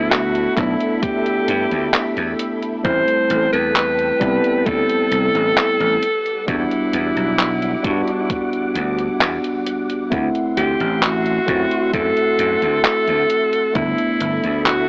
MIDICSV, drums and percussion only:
0, 0, Header, 1, 2, 480
1, 0, Start_track
1, 0, Tempo, 909091
1, 1503, Time_signature, 4, 2, 24, 8
1, 7861, End_track
2, 0, Start_track
2, 0, Title_t, "Drums"
2, 64, Note_on_c, 9, 39, 116
2, 64, Note_on_c, 9, 42, 69
2, 116, Note_off_c, 9, 39, 0
2, 116, Note_off_c, 9, 42, 0
2, 185, Note_on_c, 9, 42, 41
2, 238, Note_off_c, 9, 42, 0
2, 303, Note_on_c, 9, 36, 106
2, 303, Note_on_c, 9, 39, 35
2, 303, Note_on_c, 9, 42, 88
2, 356, Note_off_c, 9, 36, 0
2, 356, Note_off_c, 9, 39, 0
2, 356, Note_off_c, 9, 42, 0
2, 425, Note_on_c, 9, 42, 41
2, 478, Note_off_c, 9, 42, 0
2, 542, Note_on_c, 9, 42, 67
2, 543, Note_on_c, 9, 36, 118
2, 595, Note_off_c, 9, 42, 0
2, 596, Note_off_c, 9, 36, 0
2, 665, Note_on_c, 9, 42, 40
2, 718, Note_off_c, 9, 42, 0
2, 782, Note_on_c, 9, 42, 96
2, 835, Note_off_c, 9, 42, 0
2, 905, Note_on_c, 9, 42, 40
2, 958, Note_off_c, 9, 42, 0
2, 1022, Note_on_c, 9, 39, 117
2, 1022, Note_on_c, 9, 42, 68
2, 1075, Note_off_c, 9, 39, 0
2, 1075, Note_off_c, 9, 42, 0
2, 1145, Note_on_c, 9, 42, 38
2, 1198, Note_off_c, 9, 42, 0
2, 1263, Note_on_c, 9, 42, 93
2, 1316, Note_off_c, 9, 42, 0
2, 1385, Note_on_c, 9, 42, 42
2, 1438, Note_off_c, 9, 42, 0
2, 1503, Note_on_c, 9, 36, 123
2, 1503, Note_on_c, 9, 42, 71
2, 1556, Note_off_c, 9, 36, 0
2, 1556, Note_off_c, 9, 42, 0
2, 1625, Note_on_c, 9, 42, 41
2, 1678, Note_off_c, 9, 42, 0
2, 1743, Note_on_c, 9, 42, 96
2, 1796, Note_off_c, 9, 42, 0
2, 1865, Note_on_c, 9, 42, 41
2, 1918, Note_off_c, 9, 42, 0
2, 1983, Note_on_c, 9, 39, 120
2, 1983, Note_on_c, 9, 42, 71
2, 2036, Note_off_c, 9, 39, 0
2, 2036, Note_off_c, 9, 42, 0
2, 2105, Note_on_c, 9, 42, 43
2, 2158, Note_off_c, 9, 42, 0
2, 2223, Note_on_c, 9, 36, 108
2, 2223, Note_on_c, 9, 42, 95
2, 2275, Note_off_c, 9, 36, 0
2, 2276, Note_off_c, 9, 42, 0
2, 2345, Note_on_c, 9, 42, 42
2, 2398, Note_off_c, 9, 42, 0
2, 2462, Note_on_c, 9, 42, 70
2, 2463, Note_on_c, 9, 36, 127
2, 2515, Note_off_c, 9, 36, 0
2, 2515, Note_off_c, 9, 42, 0
2, 2584, Note_on_c, 9, 42, 43
2, 2637, Note_off_c, 9, 42, 0
2, 2702, Note_on_c, 9, 42, 100
2, 2754, Note_off_c, 9, 42, 0
2, 2825, Note_on_c, 9, 42, 42
2, 2878, Note_off_c, 9, 42, 0
2, 2943, Note_on_c, 9, 39, 118
2, 2943, Note_on_c, 9, 42, 70
2, 2995, Note_off_c, 9, 39, 0
2, 2995, Note_off_c, 9, 42, 0
2, 3065, Note_on_c, 9, 42, 43
2, 3118, Note_off_c, 9, 42, 0
2, 3182, Note_on_c, 9, 42, 95
2, 3235, Note_off_c, 9, 42, 0
2, 3305, Note_on_c, 9, 42, 42
2, 3357, Note_off_c, 9, 42, 0
2, 3422, Note_on_c, 9, 36, 125
2, 3422, Note_on_c, 9, 42, 70
2, 3474, Note_off_c, 9, 42, 0
2, 3475, Note_off_c, 9, 36, 0
2, 3544, Note_on_c, 9, 42, 42
2, 3597, Note_off_c, 9, 42, 0
2, 3661, Note_on_c, 9, 42, 100
2, 3714, Note_off_c, 9, 42, 0
2, 3784, Note_on_c, 9, 42, 41
2, 3837, Note_off_c, 9, 42, 0
2, 3902, Note_on_c, 9, 39, 127
2, 3902, Note_on_c, 9, 42, 72
2, 3955, Note_off_c, 9, 39, 0
2, 3955, Note_off_c, 9, 42, 0
2, 4025, Note_on_c, 9, 42, 42
2, 4078, Note_off_c, 9, 42, 0
2, 4142, Note_on_c, 9, 36, 110
2, 4142, Note_on_c, 9, 42, 97
2, 4194, Note_off_c, 9, 36, 0
2, 4194, Note_off_c, 9, 42, 0
2, 4264, Note_on_c, 9, 42, 43
2, 4317, Note_off_c, 9, 42, 0
2, 4382, Note_on_c, 9, 36, 127
2, 4382, Note_on_c, 9, 42, 73
2, 4434, Note_off_c, 9, 42, 0
2, 4435, Note_off_c, 9, 36, 0
2, 4504, Note_on_c, 9, 42, 43
2, 4557, Note_off_c, 9, 42, 0
2, 4622, Note_on_c, 9, 42, 100
2, 4675, Note_off_c, 9, 42, 0
2, 4744, Note_on_c, 9, 42, 42
2, 4797, Note_off_c, 9, 42, 0
2, 4862, Note_on_c, 9, 39, 127
2, 4862, Note_on_c, 9, 42, 70
2, 4915, Note_off_c, 9, 39, 0
2, 4915, Note_off_c, 9, 42, 0
2, 4985, Note_on_c, 9, 42, 43
2, 5038, Note_off_c, 9, 42, 0
2, 5103, Note_on_c, 9, 42, 98
2, 5156, Note_off_c, 9, 42, 0
2, 5225, Note_on_c, 9, 42, 44
2, 5278, Note_off_c, 9, 42, 0
2, 5342, Note_on_c, 9, 36, 127
2, 5342, Note_on_c, 9, 42, 68
2, 5395, Note_off_c, 9, 36, 0
2, 5395, Note_off_c, 9, 42, 0
2, 5465, Note_on_c, 9, 42, 41
2, 5518, Note_off_c, 9, 42, 0
2, 5582, Note_on_c, 9, 42, 98
2, 5635, Note_off_c, 9, 42, 0
2, 5704, Note_on_c, 9, 42, 42
2, 5757, Note_off_c, 9, 42, 0
2, 5821, Note_on_c, 9, 39, 123
2, 5821, Note_on_c, 9, 42, 69
2, 5874, Note_off_c, 9, 39, 0
2, 5874, Note_off_c, 9, 42, 0
2, 5944, Note_on_c, 9, 42, 43
2, 5997, Note_off_c, 9, 42, 0
2, 6062, Note_on_c, 9, 36, 114
2, 6062, Note_on_c, 9, 42, 92
2, 6114, Note_off_c, 9, 42, 0
2, 6115, Note_off_c, 9, 36, 0
2, 6184, Note_on_c, 9, 42, 41
2, 6237, Note_off_c, 9, 42, 0
2, 6302, Note_on_c, 9, 36, 127
2, 6302, Note_on_c, 9, 42, 68
2, 6355, Note_off_c, 9, 36, 0
2, 6355, Note_off_c, 9, 42, 0
2, 6425, Note_on_c, 9, 42, 40
2, 6477, Note_off_c, 9, 42, 0
2, 6541, Note_on_c, 9, 42, 99
2, 6594, Note_off_c, 9, 42, 0
2, 6664, Note_on_c, 9, 42, 41
2, 6717, Note_off_c, 9, 42, 0
2, 6781, Note_on_c, 9, 39, 127
2, 6781, Note_on_c, 9, 42, 69
2, 6834, Note_off_c, 9, 39, 0
2, 6834, Note_off_c, 9, 42, 0
2, 6904, Note_on_c, 9, 42, 42
2, 6957, Note_off_c, 9, 42, 0
2, 7021, Note_on_c, 9, 42, 91
2, 7074, Note_off_c, 9, 42, 0
2, 7143, Note_on_c, 9, 42, 44
2, 7196, Note_off_c, 9, 42, 0
2, 7260, Note_on_c, 9, 42, 65
2, 7262, Note_on_c, 9, 36, 125
2, 7313, Note_off_c, 9, 42, 0
2, 7314, Note_off_c, 9, 36, 0
2, 7383, Note_on_c, 9, 42, 40
2, 7436, Note_off_c, 9, 42, 0
2, 7500, Note_on_c, 9, 42, 92
2, 7553, Note_off_c, 9, 42, 0
2, 7622, Note_on_c, 9, 42, 42
2, 7675, Note_off_c, 9, 42, 0
2, 7740, Note_on_c, 9, 39, 123
2, 7740, Note_on_c, 9, 42, 69
2, 7793, Note_off_c, 9, 39, 0
2, 7793, Note_off_c, 9, 42, 0
2, 7861, End_track
0, 0, End_of_file